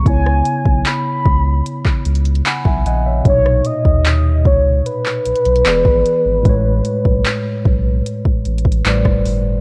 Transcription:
0.03 0.42 C#2 loud
0.03 2.40 C#3 medium
0.03 2.41 B3 medium
0.03 kick loud
0.03 closed hi-hat medium
0.07 2.43 E4 medium
0.07 2.44 C#5 medium
0.07 0.89 G#5 loud
0.26 cross-stick medium
0.45 closed hi-hat medium
0.65 0.84 B1 medium
0.65 kick loud
0.85 2.06 B5 loud
0.85 clap loud
0.85 closed hi-hat medium
1.25 1.62 C#2 medium
1.25 kick loud
1.66 closed hi-hat medium
1.85 kick medium
1.85 clap medium
2.05 2.42 C#2 medium
2.05 closed hi-hat medium
2.15 closed hi-hat medium
2.25 closed hi-hat medium
2.35 closed hi-hat soft
2.46 2.83 F#5 medium
2.46 2.65 G#5 medium
2.46 2.65 B5 medium
2.46 clap loud
2.46 closed hi-hat medium
2.65 2.84 B1 medium
2.65 2.85 E5 medium
2.65 2.85 G#5 medium
2.65 kick loud
2.86 3.22 A#1 medium
2.86 3.06 D#5 medium
2.86 3.05 F#5 medium
2.86 3.23 G#5 medium
2.86 closed hi-hat medium
3.06 3.29 C#5 medium
3.06 3.44 E5 medium
3.23 3.62 B1 loud
3.23 5.62 A#2 medium
3.23 5.60 B2 medium
3.23 3.68 C#5 loud
3.23 kick loud
3.23 closed hi-hat medium
3.28 3.33 D4 medium
3.28 5.64 C#5 medium
3.34 5.66 D#4 medium
3.46 cross-stick medium
3.65 4.48 D#5 loud
3.65 closed hi-hat medium
3.85 4.47 D#2 medium
3.85 kick loud
4.05 clap loud
4.05 closed hi-hat medium
4.45 4.82 C#2 medium
4.45 4.88 C#5 loud
4.45 kick loud
4.86 8.86 B4 medium
4.86 closed hi-hat medium
5.06 clap medium
5.26 5.34 B1 soft
5.26 closed hi-hat medium
5.36 closed hi-hat medium
5.45 5.64 B1 medium
5.45 closed hi-hat medium
5.56 closed hi-hat soft
5.65 5.84 E1 loud
5.65 6.45 E3 medium
5.65 6.46 B3 medium
5.65 6.46 G#4 medium
5.65 6.47 D5 medium
5.65 clap loud
5.65 closed hi-hat medium
5.85 6.04 G#1 medium
5.85 kick loud
6.06 closed hi-hat medium
6.26 6.44 G#1 medium
6.43 6.82 A1 loud
6.43 8.80 A2 medium
6.43 8.81 G#3 medium
6.43 kick loud
6.43 closed hi-hat medium
6.47 8.82 B4 medium
6.47 8.84 C#5 medium
6.85 closed hi-hat medium
7.05 7.24 B1 loud
7.05 kick loud
7.25 clap loud
7.25 closed hi-hat medium
7.65 8.02 B1 medium
7.65 kick loud
8.06 closed hi-hat medium
8.25 kick medium
8.45 8.82 A1 medium
8.45 closed hi-hat soft
8.58 closed hi-hat medium
8.65 kick medium
8.72 closed hi-hat medium
8.85 9.04 A1 loud
8.85 9.61 A2 medium
8.85 9.61 G3 medium
8.85 9.61 B4 medium
8.85 9.61 C5 medium
8.85 9.61 D5 medium
8.85 clap loud
8.85 closed hi-hat medium
9.05 9.24 F#1 medium
9.05 kick loud
9.05 cross-stick medium
9.26 9.61 G1 medium
9.26 open hi-hat medium

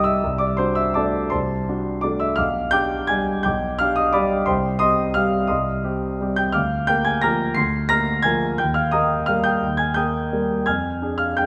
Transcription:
0.00 0.24 C2 medium
0.00 0.20 G3 soft
0.00 0.26 D#4 medium
0.00 0.26 G4 medium
0.00 0.26 D5 medium
0.00 0.26 D#5 medium
0.00 0.26 C6 medium
0.00 0.26 D6 medium
0.00 0.27 D#6 medium
0.00 0.40 E6 medium
0.06 0.39 E5 medium
0.24 0.59 C2 medium
0.38 0.58 D5 medium
0.38 0.58 D6 medium
0.57 0.93 D4 soft
0.57 0.93 F#4 medium
0.57 0.76 C5 medium
0.57 0.77 C6 medium
0.75 0.95 E5 medium
0.75 0.96 E6 medium
0.94 1.29 A3 soft
0.94 1.30 D4 soft
0.94 1.30 F#4 medium
0.94 1.30 D5 medium
0.94 1.30 A5 medium
0.94 1.32 D6 medium
1.30 1.67 C2 soft
1.30 1.99 C5 medium
1.30 1.99 A5 medium
1.30 2.03 C6 medium
1.69 2.01 D4 soft
1.69 2.01 F#4 medium
2.01 2.36 A3 soft
2.01 2.36 D4 soft
2.01 2.36 F#4 soft
2.01 2.20 D5 medium
2.01 2.21 D6 medium
2.20 2.37 E5 medium
2.20 2.38 E6 medium
2.36 2.72 B1 medium
2.36 2.70 F5 medium
2.36 2.70 D6 medium
2.36 2.72 F6 medium
2.71 3.06 D4 soft
2.71 3.06 G4 medium
2.71 3.06 G5 medium
2.71 3.06 D6 medium
2.71 3.08 G6 loud
3.07 3.42 G3 soft
3.07 3.42 D4 soft
3.07 3.42 G4 soft
3.07 3.42 G#5 medium
3.07 3.44 G#6 medium
3.43 3.79 B1 medium
3.43 3.77 G5 medium
3.43 3.77 D6 medium
3.43 3.79 G6 medium
3.79 4.12 D4 soft
3.79 4.12 G4 medium
3.79 3.96 F5 medium
3.79 3.97 F6 medium
3.96 4.14 D#5 medium
3.96 4.14 D#6 medium
4.13 4.45 G3 soft
4.13 4.46 D4 soft
4.13 4.46 G4 soft
4.13 4.46 D5 medium
4.13 4.46 B5 medium
4.13 4.48 D6 medium
4.46 4.80 C2 medium
4.46 4.79 C5 medium
4.46 4.79 G5 medium
4.46 4.78 C6 medium
4.79 5.13 C4 soft
4.79 5.13 G4 soft
4.79 5.13 D#5 medium
4.79 5.13 C6 medium
4.79 5.15 D#6 loud
5.14 5.47 G3 soft
5.14 5.47 C4 soft
5.14 5.48 G4 soft
5.14 5.48 F5 medium
5.14 5.49 F6 medium
5.47 5.83 C2 medium
5.47 6.15 D#5 medium
5.47 6.15 C6 medium
5.47 6.19 D#6 medium
5.84 6.17 C4 soft
5.84 6.17 G4 medium
6.21 6.52 G3 soft
6.21 6.52 C4 soft
6.21 6.52 G4 medium
6.36 6.53 G5 medium
6.36 6.54 G6 medium
6.52 6.87 D2 medium
6.52 6.85 F5 medium
6.52 6.85 D6 medium
6.52 6.87 F6 medium
6.87 7.20 A#3 soft
6.87 7.20 A#4 soft
6.87 7.04 G5 medium
6.87 7.05 G6 medium
7.05 7.22 G#5 medium
7.05 7.22 G#6 medium
7.22 7.54 F3 soft
7.22 7.54 A#3 soft
7.22 7.54 A#4 soft
7.22 7.54 A#5 medium
7.22 7.54 F6 medium
7.22 7.56 A#6 medium
7.54 7.89 D2 medium
7.54 7.87 C6 medium
7.54 7.89 C7 medium
7.89 8.21 A#3 soft
7.89 8.22 A#4 medium
7.89 8.22 A#5 medium
7.89 8.22 F6 medium
7.89 8.24 A#6 loud
8.22 8.56 F3 soft
8.22 8.56 A#3 soft
8.22 8.56 A#4 soft
8.22 8.57 G#5 medium
8.22 8.58 G#6 medium
8.58 8.92 D#2 medium
8.58 8.75 G5 medium
8.58 8.75 G6 medium
8.74 8.91 F5 medium
8.74 8.92 F6 medium
8.91 9.25 A#3 soft
8.91 9.25 A#4 medium
8.91 9.26 D#5 medium
8.91 9.26 A#5 medium
8.91 9.28 D#6 medium
9.26 9.59 G3 soft
9.26 9.59 A#3 soft
9.26 9.60 A#4 soft
9.26 9.44 F5 medium
9.26 9.45 F6 medium
9.44 9.76 G5 medium
9.44 9.76 D#6 medium
9.44 9.78 G6 medium
9.63 9.95 D#2 soft
9.77 9.95 G#5 medium
9.77 9.95 G#6 medium
9.94 10.29 A#3 soft
9.94 10.29 A#4 medium
9.94 10.29 G5 medium
9.94 10.29 D#6 medium
9.94 10.31 G6 medium
10.32 10.63 G3 soft
10.32 10.64 A#3 soft
10.32 10.64 A#4 soft
10.66 11.01 F2 soft
10.66 11.17 G#5 medium
10.66 11.16 F6 medium
10.66 11.20 G#6 medium
11.02 11.35 D4 soft
11.02 11.35 G#4 soft
11.18 11.36 F5 medium
11.18 11.37 F6 medium
11.37 11.46 G#3 soft
11.37 11.46 D4 soft
11.37 11.46 G#4 soft
11.37 11.46 G5 medium
11.37 11.46 G6 medium

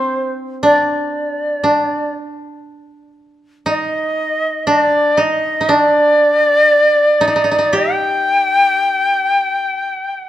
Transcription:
0.00 2.22 C4 medium
0.00 0.62 D4 soft
0.00 0.35 C5 medium
0.63 1.63 D4 medium
0.63 2.12 D5 medium
1.64 3.72 D4 medium
3.66 4.73 D#4 medium
3.66 4.65 D#5 medium
4.67 5.23 D4 medium
4.67 5.23 D5 medium
5.17 5.60 D#4 medium
5.17 5.74 D#5 medium
5.61 5.75 D#4 soft
5.69 7.27 D4 medium
5.69 7.79 D5 medium
7.21 7.27 D#4 medium
7.28 7.35 D#4 soft
7.36 7.44 D#4 medium
7.44 7.51 D#4 soft
7.51 7.58 D#4 medium
7.58 9.93 D#4 soft
7.73 10.29 G4 medium
7.77 10.29 G5 medium

